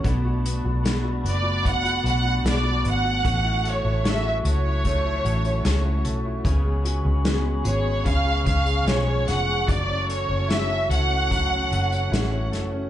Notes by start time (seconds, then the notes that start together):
Already playing: A5
0.04 B1 B2 F#3 A3 B3 D4 F#4 D5 B5, kick, closed hi-hat
0.25 F#4
0.44 A3 B3 D4 F#4, closed hi-hat
0.64 B1 F#4
0.83 F#3 A3 B3 D4 F#4, snare, closed hi-hat
1.04 F#4
1.23 F#1 A3 B3 D4 F#4 D5, closed hi-hat
1.43 F#4
1.63 B3 F#5, kick, closed hi-hat
1.84 F#4, closed hi-hat
2.03 B1 A3 B3 D4 F#4, closed hi-hat
2.07 F#5
2.24 F#4
2.43 B1 F#3 A3 B3 D4 F#4, snare, closed hi-hat
2.47 D5
2.63 F#4
2.84 G#1 B3, closed hi-hat
2.89 F#5
3.03 F#4
3.23 A1 A2 E3 F#3 A3 C#4 F#4 E5 C#6, kick, closed hi-hat
3.44 E4
3.63 F#3 A3 C#4 F#4 A4, closed hi-hat
3.69 C#5
3.85 A1 E4
4.04 F#3 A3 C#4 F#4 A4, snare, closed hi-hat
4.09 E5
4.26 E4 E5
4.44 C#2 F#3 A3 C#4 F#4 A4 C#5, closed hi-hat
4.65 E4
4.85 A3, kick, closed hi-hat
5.06 E4
5.24 A1 F#3 A3 C#4 F#4 A4, closed hi-hat
5.44 E4, closed hi-hat
5.64 C#2 F#3 A3 C#4 F#4 A4, snare, closed hi-hat
5.85 E4
6.05 B1 A4, closed hi-hat
6.25 E4
6.44 C#2 C#3 F#3 B3 C#4 G#4 F#5 B5 C#6, kick, closed hi-hat
6.64 G#3
6.84 B3 C#4 F#4 G#4, closed hi-hat
7.05 C#2 G#3
7.24 F#3 B3 C#4 G#4, snare, closed hi-hat
7.45 G#3
7.64 G#1 B3 C#4 F#4 G#4 C#5, closed hi-hat
7.85 G#3
8.05 C#2 C#3 F3 B3 C#4 G#4 F5 G#5, kick, closed hi-hat
8.26 G#3
8.46 C#2 B3 C#4 G#4 F5, kick, closed hi-hat
8.65 G#3, closed hi-hat
8.86 B1 F3 B3 C#4 G#4 C#5, snare, closed hi-hat
9.06 G#3
9.27 F1 G#4 F#5, snare, closed hi-hat
9.46 G#3
9.67 F#1 F#2 C#3 E3 F#3 A3 F#4 D5 E5 A5, kick, closed hi-hat
9.88 C#4
10.09 E3 A3 C#4 F#4 A4 C#5, closed hi-hat
10.28 F#1 C#4
10.48 E3 A3 C#4 E4 F#4 E5, snare, closed hi-hat
10.69 C#4
10.89 C#2 E3 A3 C#4 F#4 A4 F#5, closed hi-hat
11.10 C#4
11.31 F#3, kick, closed hi-hat
11.52 C#4
11.71 F#1 E3 A3 C#4 F#4 A4, closed hi-hat
11.92 C#4, closed hi-hat
12.11 A1 E3 A3 C#4 E4 F#4, snare, closed hi-hat
12.32 C#4
12.52 F#1 A4, snare, closed hi-hat
12.73 C#4